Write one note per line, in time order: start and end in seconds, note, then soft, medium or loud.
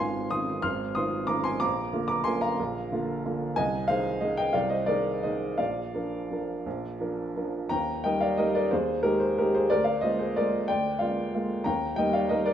0.00 0.63 G#1 medium
0.00 0.29 D#3 soft
0.00 0.29 C4 soft
0.00 0.29 F4 soft
0.00 0.67 F5 medium
0.00 0.67 G#5 medium
0.00 0.30 C6 medium
0.31 0.61 D#3 soft
0.31 0.61 C4 soft
0.31 0.61 F4 soft
0.31 0.61 C6 medium
0.31 0.63 D#6 medium
0.62 0.95 G#1 medium
0.62 0.93 C6 medium
0.62 0.95 F6 medium
0.95 1.26 D#3 soft
0.95 1.26 C4 soft
0.95 1.26 F4 soft
0.95 1.27 C6 medium
0.95 1.28 D#6 medium
1.27 1.58 D#3 soft
1.27 1.58 C4 soft
1.27 1.58 F4 soft
1.27 1.44 A#5 medium
1.27 1.44 D6 medium
1.44 1.60 G#5 medium
1.44 1.61 C6 medium
1.60 1.93 A#1 medium
1.60 2.06 A#5 medium
1.60 2.06 D6 loud
1.93 2.23 D3 soft
1.93 2.23 A#3 soft
1.93 2.24 F4 soft
2.08 2.25 A#5 medium
2.08 2.26 D6 medium
2.24 2.55 D3 soft
2.24 2.56 A#3 soft
2.24 2.56 F4 soft
2.24 2.41 G#5 medium
2.24 2.42 C6 medium
2.41 3.20 F5 medium
2.41 3.24 A#5 medium
2.59 2.91 A#1 medium
2.92 3.22 D3 soft
2.92 3.22 A#3 soft
2.92 3.22 F4 medium
3.26 3.54 D3 soft
3.26 3.54 A#3 soft
3.26 3.54 F4 soft
3.56 3.88 C2 medium
3.56 3.87 D#5 medium
3.56 3.89 G#5 loud
3.88 4.19 D#3 soft
3.88 4.20 D#4 soft
3.88 4.20 G#4 soft
3.88 4.20 C5 medium
3.88 4.22 F5 loud
4.21 4.52 D#3 soft
4.21 4.51 D#4 soft
4.21 4.52 G#4 soft
4.21 4.38 C5 medium
4.21 4.37 D#5 medium
4.37 4.53 D#5 medium
4.37 4.54 G5 medium
4.53 4.86 C2 medium
4.53 4.70 D5 medium
4.53 4.70 F5 medium
4.70 4.87 C5 medium
4.70 4.87 D#5 medium
4.86 5.20 D#3 soft
4.86 5.20 D#4 soft
4.86 5.20 G#4 soft
4.86 5.21 A#4 medium
4.86 5.23 D5 medium
5.23 5.56 D#3 soft
5.23 5.56 D#4 soft
5.23 5.56 G#4 soft
5.23 5.57 C5 medium
5.23 5.58 D#5 medium
5.58 5.92 A#1 medium
5.58 7.50 D5 medium
5.58 7.53 F5 medium
5.94 6.27 F3 soft
5.94 6.27 D4 soft
5.94 6.27 A#4 soft
6.31 6.63 F3 soft
6.31 6.63 D4 soft
6.31 6.63 A#4 soft
6.66 7.00 A#1 medium
7.00 7.32 F3 soft
7.00 7.33 D4 soft
7.00 7.33 A#4 soft
7.37 7.68 F3 soft
7.37 7.68 D4 soft
7.37 7.68 A#4 soft
7.69 8.04 D#2 medium
7.69 8.02 G5 medium
7.69 8.04 A#5 medium
8.04 8.36 G3 soft
8.04 8.36 D#4 soft
8.04 8.36 A#4 soft
8.04 8.21 D#5 medium
8.04 8.22 G5 medium
8.21 8.38 D5 medium
8.21 8.39 F5 medium
8.37 8.69 G3 soft
8.37 8.69 D#4 soft
8.37 8.55 A#4 medium
8.37 8.55 D#5 medium
8.55 8.71 A#4 medium
8.55 8.71 D5 medium
8.71 9.04 D#2 medium
8.71 9.02 G#4 medium
8.71 9.04 C5 medium
9.03 9.34 G#3 soft
9.03 9.34 D#4 soft
9.03 9.20 G4 medium
9.03 9.19 G#4 soft
9.03 9.20 A#4 medium
9.20 9.37 G#4 medium
9.20 9.37 C5 medium
9.38 9.68 G#3 soft
9.38 9.68 D#4 soft
9.38 9.54 G4 medium
9.38 9.54 G#4 soft
9.38 9.55 A#4 medium
9.54 9.70 G#4 medium
9.54 9.70 C5 medium
9.70 10.02 D2 medium
9.70 9.85 A#4 medium
9.70 9.84 D5 medium
9.84 10.01 D5 medium
9.84 10.02 F5 medium
10.01 10.33 G#3 soft
10.01 10.33 A#3 soft
10.01 10.34 F4 soft
10.01 10.17 C5 medium
10.01 10.19 D#5 medium
10.19 10.35 G#4 medium
10.19 10.36 C5 medium
10.36 10.67 G#3 soft
10.36 10.67 A#3 soft
10.36 10.67 F4 soft
10.36 10.67 A#4 medium
10.36 10.68 D5 medium
10.68 11.00 D2 medium
10.68 10.99 D5 medium
10.68 11.00 G5 medium
10.99 11.31 G#3 soft
10.99 11.30 A#3 soft
10.99 11.31 F4 soft
10.99 11.47 D5 soft
10.99 11.49 F5 medium
11.34 11.63 G#3 soft
11.34 11.63 A#3 soft
11.34 11.63 F4 soft
11.64 11.97 D#2 medium
11.64 11.95 G5 medium
11.64 11.97 A#5 medium
11.96 12.27 G3 soft
11.96 12.28 A#3 soft
11.96 12.28 D#4 soft
11.96 12.13 D#5 medium
11.96 12.13 G5 medium
12.13 12.30 D5 medium
12.13 12.30 F5 medium
12.29 12.53 G3 soft
12.29 12.53 A#3 soft
12.29 12.53 D#4 soft
12.29 12.45 A#4 medium
12.29 12.46 D#5 medium
12.46 12.53 A#4 medium
12.46 12.53 D5 medium